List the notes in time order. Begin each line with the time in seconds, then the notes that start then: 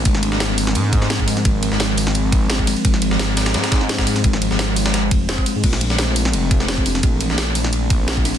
Already playing: C4
0.05 G#1 F3 G#3 A#4, kick, closed hi-hat, ride
0.15 snare
0.23 closed hi-hat, ride
0.32 snare
0.40 snare, closed hi-hat, ride
0.58 open hi-hat, ride
0.67 snare
0.75 G#2, closed hi-hat, ride
0.93 kick, closed hi-hat, ride
1.02 snare
1.10 C4, snare, closed hi-hat, ride
1.20 kick
1.28 G#3, open hi-hat, ride
1.37 snare, ride
1.45 G#1 G#3, kick, closed hi-hat, ride
1.63 closed hi-hat, ride
1.72 G#1, snare
1.80 snare, closed hi-hat, ride
1.97 open hi-hat, ride
2.07 snare
2.15 closed hi-hat, ride
2.32 kick, closed hi-hat, ride
2.50 C4, snare, closed hi-hat, ride
2.59 kick
2.67 G#3, open hi-hat, ride
2.77 ride
2.84 G#1 G#3 C5, kick, closed hi-hat, ride
2.94 snare
3.02 closed hi-hat, ride
3.11 snare
3.19 snare, closed hi-hat, ride
3.37 snare, open hi-hat, ride
3.46 snare, ride
3.54 G#2, snare, closed hi-hat, ride
3.64 snare, ride
3.72 kick, snare, closed hi-hat, ride
3.81 snare
3.89 C4, snare, closed hi-hat, ride
3.98 kick, snare, ride
4.07 G#3, open hi-hat, ride
4.16 snare, ride
4.24 G#1 G#3, kick, closed hi-hat, ride
4.33 snare
4.42 closed hi-hat, ride
4.51 G#1, snare
4.59 snare, closed hi-hat, ride
4.76 open hi-hat, ride
4.86 snare, ride
4.94 snare, closed hi-hat, ride
5.11 F1, kick, closed hi-hat, ride
5.29 C4, snare, closed hi-hat, ride
5.38 kick
5.46 G#3, open hi-hat, ride
5.56 G#2
5.64 A#1 E3 A3 C4 D4 A4, kick, closed hi-hat, crash, ride
5.73 snare
5.81 closed hi-hat, ride
5.90 snare
5.98 snare, closed hi-hat, ride
6.16 open hi-hat, ride
6.25 snare
6.33 F1, closed hi-hat, ride
6.51 kick, closed hi-hat, ride
6.60 snare
6.68 C4, snare, closed hi-hat, ride
6.78 kick
6.86 D4, open hi-hat, ride
6.95 snare, ride
7.03 A#1 A3, kick, closed hi-hat, ride
7.21 closed hi-hat, ride
7.30 A#1, snare
7.38 snare, closed hi-hat, ride
7.55 open hi-hat, ride
7.64 snare
7.73 closed hi-hat, ride
7.90 kick, closed hi-hat, ride
8.08 C4, snare, closed hi-hat, ride
8.17 kick
8.25 D4, open hi-hat, ride
8.35 ride